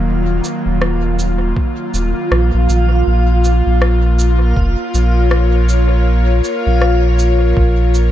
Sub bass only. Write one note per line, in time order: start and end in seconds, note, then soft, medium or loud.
0.00 0.41 D#1 medium
0.66 1.54 D#1 medium
1.94 2.14 D#1 medium
2.31 2.51 A#1 loud
2.54 2.68 A#1 medium
2.69 3.03 A#1 medium
3.07 3.62 A#1 loud
3.67 4.54 A#1 medium
4.56 4.76 F1 loud
4.94 6.41 A#1 medium
6.67 7.54 A#1 medium
7.57 8.12 A#1 medium